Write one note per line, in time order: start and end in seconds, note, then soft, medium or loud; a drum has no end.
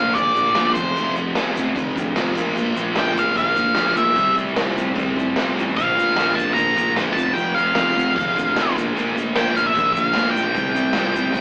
0.00 0.13 A#1 medium
0.00 0.15 A#2 medium
0.00 0.16 F3 medium
0.00 0.17 A#3 medium
0.00 0.17 F5 medium
0.14 0.33 A#1 medium
0.14 0.35 A#2 medium
0.14 0.37 F3 loud
0.14 0.37 A#3 loud
0.14 0.71 D5 loud
0.14 kick loud
0.14 crash medium
0.14 shaker medium
0.35 0.53 A#1 medium
0.35 0.55 A#2 medium
0.35 0.57 F3 medium
0.35 0.57 A#3 loud
0.35 kick medium
0.35 shaker loud
0.55 0.77 D2 medium
0.55 0.75 A#2 medium
0.55 0.79 F3 loud
0.55 0.76 A#3 loud
0.55 snare loud
0.55 crash medium
0.55 shaker medium
0.74 0.93 F1 medium
0.74 0.96 F2 medium
0.74 1.12 C5 medium
0.74 kick loud
0.74 shaker loud
0.78 0.97 C3 loud
0.78 0.98 F3 loud
0.96 1.29 F1 loud
0.96 1.15 F2 medium
0.96 1.17 C3 medium
0.96 1.19 F3 loud
0.96 crash medium
0.96 shaker medium
1.16 1.35 F2 medium
1.16 1.36 C3 medium
1.16 1.38 F3 loud
1.16 shaker loud
1.35 1.70 F1 loud
1.35 1.55 F2 medium
1.35 1.56 C3 medium
1.35 1.58 F3 loud
1.35 snare loud
1.35 crash medium
1.35 shaker medium
1.56 1.74 F2 medium
1.56 1.75 C3 loud
1.56 1.76 F3 loud
1.56 kick medium
1.56 shaker loud
1.75 1.93 F1 loud
1.75 1.95 F2 loud
1.75 1.96 C3 loud
1.75 1.97 F3 loud
1.75 kick loud
1.75 crash medium
1.75 shaker medium
1.96 2.13 D2 loud
1.96 2.15 F2 medium
1.96 2.16 C3 medium
1.96 2.17 F3 medium
1.96 kick medium
1.96 shaker loud
2.16 2.33 F1 loud
2.16 2.35 F2 loud
2.16 2.35 C3 loud
2.16 2.35 F3 loud
2.16 snare loud
2.16 crash medium
2.16 shaker medium
2.35 2.53 A#1 medium
2.35 2.54 A#2 medium
2.35 2.55 F3 loud
2.35 2.56 A#3 loud
2.35 kick loud
2.35 crash medium
2.35 shaker loud
2.55 2.72 A#1 loud
2.55 2.74 A#2 loud
2.55 2.75 F3 loud
2.55 2.76 A#3 loud
2.55 crash medium
2.55 shaker medium
2.75 2.93 A#1 medium
2.75 2.94 A#2 medium
2.75 2.95 F3 loud
2.75 2.96 A#3 loud
2.75 shaker loud
2.95 3.13 A#1 loud
2.95 3.14 A#2 medium
2.95 3.15 F3 medium
2.95 3.15 A#3 loud
2.95 snare loud
2.95 crash medium
2.95 shaker medium
2.99 3.18 G5 loud
3.15 3.33 A#1 medium
3.15 3.33 A#2 medium
3.15 3.34 F3 medium
3.15 3.34 A#3 medium
3.15 kick medium
3.15 shaker loud
3.19 3.36 F5 loud
3.35 3.53 A#1 loud
3.35 3.54 A#2 loud
3.35 3.55 F3 loud
3.35 3.56 A#3 loud
3.35 3.97 F5 loud
3.35 kick loud
3.35 crash medium
3.35 shaker medium
3.55 3.73 A#1 medium
3.55 3.73 A#2 medium
3.55 3.74 F3 medium
3.55 3.75 A#3 loud
3.55 kick medium
3.55 shaker loud
3.75 3.94 D2 loud
3.75 3.94 A#2 medium
3.75 3.96 F3 loud
3.75 3.96 A#3 medium
3.75 snare loud
3.75 crash medium
3.75 shaker medium
3.96 4.15 A#2 medium
3.96 4.16 F3 medium
3.96 4.16 A#3 loud
3.96 4.34 E5 medium
3.96 shaker medium
4.00 4.15 B1 medium
4.16 4.50 C2 loud
4.16 4.35 C3 medium
4.16 4.35 G3 loud
4.16 4.37 C4 loud
4.16 kick loud
4.16 crash medium
4.16 shaker medium
4.36 4.55 C3 medium
4.36 4.56 G3 loud
4.36 4.57 C4 loud
4.36 shaker medium
4.48 shaker soft
4.56 4.92 C2 loud
4.56 4.75 C3 loud
4.56 4.76 G3 loud
4.56 4.77 C4 loud
4.56 snare loud
4.56 crash medium
4.56 shaker medium
4.76 4.94 C3 medium
4.76 4.95 G3 medium
4.76 4.96 C4 loud
4.76 kick medium
4.76 shaker medium
4.95 5.13 C2 medium
4.95 5.15 C3 loud
4.95 5.16 G3 medium
4.95 5.16 C4 loud
4.95 kick loud
4.95 crash medium
4.95 shaker medium
5.16 5.34 A2 medium
5.16 5.35 C3 medium
5.16 5.36 G3 medium
5.16 5.37 C4 loud
5.16 kick medium
5.16 shaker medium
5.36 5.54 C2 medium
5.36 5.55 C3 medium
5.36 5.56 G3 medium
5.36 5.57 C4 loud
5.36 snare loud
5.36 crash medium
5.36 shaker medium
5.56 5.74 A1 medium
5.56 5.75 C3 medium
5.56 5.76 G3 loud
5.56 5.76 C4 loud
5.56 shaker loud
5.69 shaker soft
5.76 5.93 A#1 medium
5.76 5.94 A#2 medium
5.76 5.96 F3 loud
5.76 5.96 A#3 loud
5.76 6.39 F5 loud
5.76 kick loud
5.76 crash medium
5.76 shaker medium
5.96 6.14 A#1 medium
5.96 6.14 A#2 medium
5.96 6.16 F3 medium
5.96 6.16 A#3 loud
5.96 shaker loud
6.16 6.34 A#1 loud
6.16 6.34 A#2 loud
6.16 6.36 F3 loud
6.16 6.36 A#3 loud
6.16 snare loud
6.16 crash medium
6.16 shaker medium
6.35 6.54 A#1 loud
6.35 6.54 A#2 medium
6.35 6.56 F3 medium
6.35 6.56 A#3 medium
6.35 6.53 A5 loud
6.35 kick medium
6.35 shaker loud
6.53 6.74 A#1 loud
6.53 6.74 A#2 medium
6.53 6.76 F3 loud
6.53 6.76 A#3 loud
6.53 6.92 A#5 loud
6.53 kick loud
6.53 crash medium
6.58 shaker medium
6.75 6.94 A#1 medium
6.75 6.94 A#2 medium
6.75 6.96 F3 medium
6.75 6.96 A#3 loud
6.75 kick medium
6.75 shaker loud
6.95 7.13 D2 loud
6.95 7.15 A#2 loud
6.95 7.16 F3 loud
6.95 7.16 A#3 loud
6.95 snare loud
6.95 crash medium
6.95 shaker medium
7.13 7.33 F2 loud
7.13 7.34 C3 loud
7.13 7.35 F3 loud
7.13 7.33 A5 loud
7.13 kick loud
7.17 7.34 F1 medium
7.17 shaker loud
7.33 7.70 F1 loud
7.33 7.53 F2 loud
7.33 7.55 C3 loud
7.33 7.57 F3 loud
7.33 7.55 G5 loud
7.33 crash medium
7.38 shaker medium
7.54 7.74 F2 medium
7.54 7.75 C3 loud
7.54 7.77 F3 medium
7.54 8.75 F5 medium
7.59 shaker loud
7.75 8.10 F1 loud
7.75 7.93 F2 medium
7.75 7.94 C3 medium
7.75 7.96 F3 loud
7.75 snare loud
7.75 crash medium
7.75 shaker medium
7.94 8.13 F2 medium
7.94 8.15 C3 loud
7.94 8.16 F3 loud
7.94 kick medium
7.99 shaker loud
8.14 8.33 F1 loud
8.14 8.34 F2 loud
8.14 8.35 C3 medium
8.14 8.36 F3 loud
8.14 kick loud
8.14 crash medium
8.19 shaker medium
8.35 8.53 D2 medium
8.35 8.53 F2 medium
8.35 8.55 C3 loud
8.35 8.55 F3 loud
8.35 kick medium
8.35 shaker loud
8.55 8.74 F1 loud
8.55 8.74 F2 medium
8.55 8.75 C3 loud
8.55 8.75 F3 loud
8.55 snare loud
8.55 crash medium
8.55 shaker medium
8.76 8.93 A#1 medium
8.76 8.95 A#2 loud
8.76 8.96 F3 loud
8.76 8.96 A#3 loud
8.76 kick loud
8.76 shaker loud
8.96 9.14 A#1 loud
8.96 9.15 A#2 medium
8.96 9.16 F3 loud
8.96 9.17 A#3 loud
8.96 crash medium
8.96 shaker medium
9.16 9.33 A#1 medium
9.16 9.35 A#2 medium
9.16 9.36 F3 medium
9.16 9.37 A#3 loud
9.16 shaker loud
9.36 9.53 A#1 loud
9.36 9.55 A#2 medium
9.36 9.56 F3 loud
9.36 9.57 A#3 loud
9.36 9.56 G5 loud
9.36 snare loud
9.36 crash medium
9.36 shaker medium
9.55 9.73 A#1 medium
9.55 9.74 A#2 medium
9.55 9.75 F3 medium
9.55 9.77 A#3 loud
9.55 9.66 F5 loud
9.55 kick medium
9.55 shaker loud
9.66 9.93 E5 loud
9.75 9.93 A#1 loud
9.75 9.95 A#2 medium
9.75 9.96 F3 loud
9.75 9.96 A#3 loud
9.75 kick loud
9.75 crash medium
9.75 shaker medium
9.93 10.12 A#1 medium
9.93 10.14 A#2 medium
9.93 10.04 E5 loud
9.93 kick medium
9.93 shaker loud
9.97 10.15 F3 medium
9.97 10.16 A#3 loud
10.04 10.31 F5 loud
10.13 10.33 D2 loud
10.13 10.34 A#2 loud
10.13 10.35 F3 loud
10.13 10.36 A#3 loud
10.13 snare loud
10.13 crash medium
10.13 shaker medium
10.31 11.41 G5 loud
10.35 10.55 A#1 medium
10.35 10.54 A#2 medium
10.35 10.55 F3 medium
10.35 10.55 A#3 loud
10.35 shaker loud
10.54 10.89 C2 loud
10.54 10.74 C3 loud
10.54 10.75 G3 loud
10.54 10.75 C4 loud
10.54 kick loud
10.54 crash medium
10.54 shaker medium
10.75 10.92 C3 medium
10.75 10.94 G3 medium
10.75 10.94 C4 loud
10.75 shaker loud
10.93 11.30 C2 medium
10.93 11.13 C3 medium
10.93 11.15 G3 loud
10.93 11.15 C4 loud
10.93 snare loud
10.93 crash medium
10.93 shaker medium
11.14 11.32 C3 medium
11.14 11.33 G3 medium
11.14 11.34 C4 loud
11.14 kick medium
11.14 shaker loud
11.32 11.41 C2 loud
11.32 11.41 C3 loud
11.32 11.41 G3 loud
11.32 11.41 C4 loud
11.32 kick loud
11.32 snare medium
11.32 shaker medium